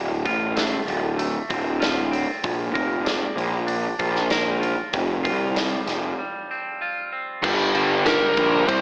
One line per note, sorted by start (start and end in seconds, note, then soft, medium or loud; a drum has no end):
0.00 0.26 D1 medium
0.00 1.50 D2 medium
0.00 0.55 D4 medium
0.25 0.75 A1 medium
0.25 1.80 F4 medium
0.25 kick medium
0.25 open hi-hat soft
0.55 1.17 A3 medium
0.55 snare medium
0.55 open hi-hat medium
0.85 1.36 D1 medium
0.85 2.43 D3 medium
0.85 open hi-hat soft
1.18 2.43 A3 medium
1.18 open hi-hat medium
1.49 2.24 D1 medium
1.49 2.10 C4 medium
1.49 kick medium
1.49 open hi-hat soft
1.80 2.73 F4 medium
1.80 snare medium
1.80 open hi-hat medium
2.11 2.43 C4 medium
2.11 open hi-hat soft
2.43 2.75 A#1 medium
2.43 3.99 A#2 medium
2.43 kick medium
2.43 open hi-hat medium
2.74 3.25 F1 medium
2.74 4.30 A#4 medium
2.74 kick medium
2.74 open hi-hat soft
3.05 3.66 D4 medium
3.05 snare medium
3.05 open hi-hat medium
3.36 3.86 A#1 medium
3.36 4.93 A#3 medium
3.36 open hi-hat soft
3.67 4.93 D4 medium
3.67 open hi-hat soft
3.99 4.74 A#1 medium
3.99 4.60 F4 medium
3.99 kick medium
3.99 open hi-hat soft
4.16 snare soft
4.30 4.93 A#4 medium
4.30 snare loud
4.30 open hi-hat medium
4.61 4.93 F4 medium
4.61 open hi-hat soft
4.93 5.27 F1 medium
4.93 6.49 F2 medium
4.93 kick loud
4.93 open hi-hat medium
5.24 5.75 C2 medium
5.24 6.80 F4 medium
5.24 kick medium
5.24 open hi-hat soft
5.55 6.18 G3 medium
5.55 snare medium
5.55 open hi-hat medium
5.86 6.11 F1 medium
5.86 7.43 F3 medium
5.86 snare soft
5.86 open hi-hat soft
6.19 7.44 G3 medium
6.51 7.11 C4 medium
6.82 7.44 F4 medium
7.13 7.44 C4 medium
7.42 8.18 G1 medium
7.42 7.73 G2 medium
7.42 8.67 G2 medium
7.42 7.73 D3 medium
7.42 7.73 G3 loud
7.42 kick loud
7.42 crash medium
7.74 8.04 G2 medium
7.74 8.04 D3 medium
7.74 8.05 G3 medium
7.74 8.69 A#3 medium
7.74 ride medium
8.05 8.35 G2 medium
8.05 8.36 D3 medium
8.05 8.36 G3 medium
8.05 8.68 G4 medium
8.05 8.68 A#4 medium
8.05 snare medium
8.05 ride medium
8.37 8.62 A#1 medium
8.37 8.66 G2 medium
8.37 8.67 D3 medium
8.37 8.67 G3 medium
8.37 8.68 D4 medium
8.37 kick medium
8.37 ride medium
8.67 8.81 C2 medium
8.67 8.81 C3 medium
8.67 8.81 G3 medium
8.67 8.81 C4 medium
8.67 8.81 C5 medium
8.67 kick medium
8.67 ride medium